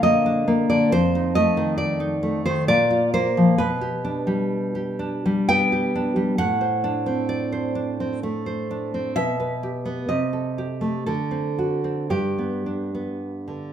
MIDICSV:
0, 0, Header, 1, 2, 480
1, 0, Start_track
1, 0, Tempo, 894188
1, 487, Time_signature, 3, 2, 24, 8
1, 2412, Tempo, 977199
1, 2892, Tempo, 902256
1, 3852, Tempo, 937500
1, 5292, Tempo, 980392
1, 5772, Tempo, 1073345
1, 6962, End_track
2, 0, Start_track
2, 0, Title_t, "Nylon-string guitar"
2, 0, Program_c, 0, 24
2, 0, Note_on_c, 0, 46, 72
2, 0, Note_on_c, 0, 50, 58
2, 0, Note_on_c, 0, 62, 58
2, 16, Note_on_c, 0, 75, 102
2, 18, Note_on_c, 0, 58, 59
2, 132, Note_off_c, 0, 62, 0
2, 139, Note_on_c, 0, 62, 61
2, 249, Note_off_c, 0, 58, 0
2, 255, Note_on_c, 0, 58, 64
2, 356, Note_off_c, 0, 75, 0
2, 371, Note_off_c, 0, 50, 0
2, 374, Note_on_c, 0, 74, 88
2, 377, Note_on_c, 0, 50, 58
2, 465, Note_off_c, 0, 46, 0
2, 489, Note_off_c, 0, 58, 0
2, 489, Note_off_c, 0, 74, 0
2, 490, Note_off_c, 0, 62, 0
2, 491, Note_off_c, 0, 50, 0
2, 495, Note_on_c, 0, 41, 70
2, 495, Note_on_c, 0, 72, 109
2, 618, Note_on_c, 0, 63, 61
2, 717, Note_off_c, 0, 72, 0
2, 726, Note_on_c, 0, 75, 102
2, 732, Note_on_c, 0, 57, 61
2, 843, Note_on_c, 0, 51, 58
2, 951, Note_off_c, 0, 75, 0
2, 954, Note_on_c, 0, 74, 89
2, 1067, Note_off_c, 0, 63, 0
2, 1073, Note_on_c, 0, 63, 55
2, 1189, Note_off_c, 0, 57, 0
2, 1195, Note_on_c, 0, 57, 61
2, 1302, Note_off_c, 0, 74, 0
2, 1314, Note_off_c, 0, 51, 0
2, 1318, Note_on_c, 0, 72, 94
2, 1320, Note_on_c, 0, 51, 60
2, 1425, Note_off_c, 0, 41, 0
2, 1438, Note_off_c, 0, 72, 0
2, 1439, Note_off_c, 0, 63, 0
2, 1440, Note_off_c, 0, 57, 0
2, 1440, Note_on_c, 0, 74, 106
2, 1442, Note_off_c, 0, 51, 0
2, 1443, Note_on_c, 0, 46, 78
2, 1559, Note_on_c, 0, 65, 60
2, 1675, Note_off_c, 0, 74, 0
2, 1684, Note_on_c, 0, 72, 102
2, 1687, Note_on_c, 0, 58, 59
2, 1810, Note_on_c, 0, 53, 58
2, 1913, Note_off_c, 0, 46, 0
2, 1917, Note_off_c, 0, 72, 0
2, 1924, Note_on_c, 0, 71, 92
2, 1925, Note_off_c, 0, 65, 0
2, 1928, Note_off_c, 0, 58, 0
2, 1929, Note_off_c, 0, 53, 0
2, 1930, Note_on_c, 0, 47, 73
2, 2047, Note_on_c, 0, 67, 59
2, 2172, Note_on_c, 0, 62, 61
2, 2291, Note_on_c, 0, 55, 54
2, 2532, Note_off_c, 0, 67, 0
2, 2538, Note_on_c, 0, 67, 54
2, 2651, Note_off_c, 0, 62, 0
2, 2657, Note_on_c, 0, 62, 56
2, 2780, Note_off_c, 0, 55, 0
2, 2786, Note_on_c, 0, 55, 58
2, 2871, Note_off_c, 0, 71, 0
2, 2900, Note_on_c, 0, 79, 111
2, 2904, Note_on_c, 0, 59, 54
2, 3019, Note_off_c, 0, 67, 0
2, 3025, Note_on_c, 0, 67, 58
2, 3143, Note_off_c, 0, 62, 0
2, 3150, Note_on_c, 0, 62, 63
2, 3252, Note_off_c, 0, 55, 0
2, 3258, Note_on_c, 0, 55, 53
2, 3353, Note_off_c, 0, 47, 0
2, 3358, Note_off_c, 0, 79, 0
2, 3375, Note_off_c, 0, 55, 0
2, 3377, Note_off_c, 0, 67, 0
2, 3377, Note_on_c, 0, 78, 102
2, 3378, Note_on_c, 0, 45, 72
2, 3379, Note_off_c, 0, 59, 0
2, 3379, Note_off_c, 0, 62, 0
2, 3497, Note_on_c, 0, 72, 53
2, 3620, Note_on_c, 0, 62, 59
2, 3739, Note_on_c, 0, 60, 55
2, 3835, Note_off_c, 0, 78, 0
2, 3859, Note_on_c, 0, 74, 74
2, 3973, Note_off_c, 0, 72, 0
2, 3979, Note_on_c, 0, 72, 52
2, 4091, Note_off_c, 0, 62, 0
2, 4097, Note_on_c, 0, 62, 53
2, 4218, Note_off_c, 0, 60, 0
2, 4224, Note_on_c, 0, 60, 55
2, 4317, Note_off_c, 0, 74, 0
2, 4340, Note_off_c, 0, 60, 0
2, 4342, Note_on_c, 0, 57, 53
2, 4454, Note_off_c, 0, 72, 0
2, 4460, Note_on_c, 0, 72, 53
2, 4579, Note_off_c, 0, 62, 0
2, 4585, Note_on_c, 0, 62, 53
2, 4703, Note_off_c, 0, 57, 0
2, 4705, Note_on_c, 0, 60, 50
2, 4797, Note_off_c, 0, 45, 0
2, 4814, Note_off_c, 0, 72, 0
2, 4816, Note_on_c, 0, 76, 106
2, 4819, Note_off_c, 0, 62, 0
2, 4819, Note_on_c, 0, 47, 67
2, 4820, Note_off_c, 0, 60, 0
2, 4939, Note_on_c, 0, 71, 46
2, 5058, Note_on_c, 0, 67, 51
2, 5173, Note_on_c, 0, 59, 47
2, 5274, Note_off_c, 0, 76, 0
2, 5280, Note_off_c, 0, 47, 0
2, 5291, Note_on_c, 0, 75, 70
2, 5293, Note_off_c, 0, 59, 0
2, 5294, Note_on_c, 0, 48, 57
2, 5295, Note_off_c, 0, 67, 0
2, 5295, Note_off_c, 0, 71, 0
2, 5410, Note_on_c, 0, 69, 46
2, 5534, Note_on_c, 0, 67, 46
2, 5646, Note_on_c, 0, 57, 48
2, 5753, Note_off_c, 0, 75, 0
2, 5759, Note_off_c, 0, 48, 0
2, 5764, Note_off_c, 0, 69, 0
2, 5770, Note_on_c, 0, 69, 76
2, 5771, Note_off_c, 0, 57, 0
2, 5773, Note_on_c, 0, 50, 55
2, 5775, Note_off_c, 0, 67, 0
2, 5881, Note_on_c, 0, 60, 42
2, 6004, Note_on_c, 0, 66, 46
2, 6112, Note_off_c, 0, 60, 0
2, 6118, Note_on_c, 0, 60, 39
2, 6224, Note_off_c, 0, 69, 0
2, 6229, Note_off_c, 0, 50, 0
2, 6234, Note_off_c, 0, 66, 0
2, 6234, Note_on_c, 0, 43, 58
2, 6235, Note_on_c, 0, 67, 67
2, 6241, Note_off_c, 0, 60, 0
2, 6361, Note_on_c, 0, 59, 39
2, 6485, Note_on_c, 0, 62, 41
2, 6606, Note_off_c, 0, 59, 0
2, 6612, Note_on_c, 0, 59, 39
2, 6849, Note_on_c, 0, 50, 35
2, 6962, Note_off_c, 0, 43, 0
2, 6962, Note_off_c, 0, 50, 0
2, 6962, Note_off_c, 0, 59, 0
2, 6962, Note_off_c, 0, 62, 0
2, 6962, Note_off_c, 0, 67, 0
2, 6962, End_track
0, 0, End_of_file